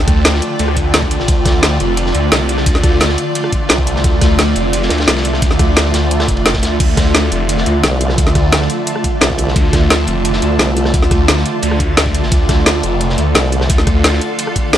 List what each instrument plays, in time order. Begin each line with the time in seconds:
Already playing: synth drone D3 A3 F4 G5, ambient pad F4 D5 A5
0.07 detuned saw bass D2, kick, cross-stick, closed hi-hat, ride
0.25 snare, closed hi-hat, ride
0.34 cross-stick, snare
0.42 closed hi-hat, ride
0.59 detuned saw bass D2, closed hi-hat, ride
0.68 cross-stick
0.77 kick, closed hi-hat, ride
0.94 detuned saw bass D2, snare, closed hi-hat, ride
1.02 kick
1.11 closed hi-hat, ride
1.20 snare
1.28 detuned saw bass D2, synth drone D5, kick, closed hi-hat, ride
1.45 detuned saw bass D2, kick, cross-stick, snare, closed hi-hat, ride
1.63 snare, closed hi-hat, ride
1.80 detuned saw bass F1, closed hi-hat, ride
1.97 closed hi-hat, ride
2.06 snare
2.14 detuned saw bass D2, closed hi-hat, ride
2.32 detuned saw bass C2, snare, closed hi-hat, ride
2.49 closed hi-hat, ride
2.57 cross-stick, snare
2.66 detuned saw bass D2, kick, closed hi-hat, ride
2.75 snare
2.83 detuned saw bass D2, kick, cross-stick, closed hi-hat, ride
3.00 snare, closed hi-hat, ride
3.09 cross-stick, snare
3.18 closed hi-hat, ride
3.35 closed hi-hat, ride
3.44 cross-stick
3.52 kick, closed hi-hat, ride
3.69 detuned saw bass C2, snare, closed hi-hat, ride
3.78 kick
3.87 closed hi-hat, ride
3.96 snare
4.04 detuned saw bass D2, synth drone E5, kick, closed hi-hat, ride
4.21 detuned saw bass D2, kick, cross-stick, snare, closed hi-hat, ride
4.38 snare, closed hi-hat, ride
4.55 detuned saw bass F1, closed hi-hat, ride
4.73 closed hi-hat, ride
4.82 snare
4.89 detuned saw bass D2, snare, closed hi-hat, ride
4.98 snare, ride
5.07 detuned saw bass C2, snare, closed hi-hat, ride
5.16 snare, ride
5.25 closed hi-hat, ride
5.34 cross-stick, snare
5.42 detuned saw bass D2, kick, closed hi-hat, ride
5.51 snare
5.59 detuned saw bass D2, kick, cross-stick, closed hi-hat, ride
5.76 snare, closed hi-hat, ride
5.85 cross-stick, snare
5.94 detuned saw bass D2, snare, closed hi-hat, ride
6.11 closed hi-hat, ride
6.20 cross-stick, snare, ride
6.28 detuned saw bass F1, kick, closed hi-hat
6.37 ride
6.45 snare, closed hi-hat, ride
6.53 kick, snare, ride
6.63 detuned saw bass D2, snare, closed hi-hat, ride
6.80 detuned saw bass D2, synth drone E5, kick, closed hi-hat, ride, crash
6.97 detuned saw bass D2, kick, cross-stick, snare, closed hi-hat, ride
7.08 ambient pad A5
7.15 snare, closed hi-hat, ride
7.32 detuned saw bass F1, closed hi-hat, ride
7.49 closed hi-hat, ride
7.57 snare
7.66 detuned saw bass D2, closed hi-hat, ride
7.84 wobble bass C2, snare, closed hi-hat, ride
8.01 closed hi-hat, ride
8.09 cross-stick, snare
8.18 detuned saw bass D2, kick, closed hi-hat, ride
8.27 snare
8.35 detuned saw bass D2, kick, cross-stick, closed hi-hat, ride
8.52 snare, closed hi-hat, ride
8.61 cross-stick, snare
8.70 closed hi-hat, ride
8.87 closed hi-hat, ride
8.96 cross-stick
9.04 kick, closed hi-hat, ride
9.21 wobble bass C2, snare, closed hi-hat, ride
9.30 kick
9.38 closed hi-hat, ride
9.48 snare
9.56 detuned saw bass D2, kick, closed hi-hat, ride
9.73 detuned saw bass D2, kick, cross-stick, snare, closed hi-hat, ride
9.90 snare, closed hi-hat, ride
10.07 detuned saw bass F1, closed hi-hat, ride
10.25 closed hi-hat, ride
10.33 snare
10.42 detuned saw bass D2, closed hi-hat, ride
10.59 wobble bass C2, snare, closed hi-hat, ride
10.77 closed hi-hat, ride
10.85 cross-stick, snare
10.94 detuned saw bass D2, kick, closed hi-hat, ride
11.02 snare
11.11 detuned saw bass D2, kick, cross-stick, closed hi-hat, ride
11.28 snare, closed hi-hat, ride
11.37 cross-stick, snare
11.46 closed hi-hat, ride
11.62 detuned saw bass D2, closed hi-hat, ride
11.71 cross-stick
11.80 kick, closed hi-hat, ride
11.97 detuned saw bass D2, snare, closed hi-hat, ride
12.06 kick
12.15 closed hi-hat, ride
12.23 snare
12.31 detuned saw bass D2, synth drone A4, kick, closed hi-hat, ride
12.49 detuned saw bass D2, kick, cross-stick, snare, closed hi-hat, ride
12.60 ambient pad F5
12.66 snare, closed hi-hat, ride
12.83 detuned saw bass F1, closed hi-hat, ride
13.01 closed hi-hat, ride
13.09 snare
13.18 detuned saw bass D2, closed hi-hat, ride
13.35 wobble bass C2, snare, closed hi-hat, ride
13.52 closed hi-hat, ride
13.61 cross-stick, snare
13.70 detuned saw bass D2, kick, closed hi-hat, ride
13.78 snare
13.87 detuned saw bass D2, kick, cross-stick, closed hi-hat, ride
14.04 snare, closed hi-hat, ride
14.13 cross-stick, snare
14.21 closed hi-hat, ride
14.39 closed hi-hat, ride
14.47 cross-stick
14.55 kick, closed hi-hat, ride
14.73 wobble bass C2, snare, closed hi-hat, ride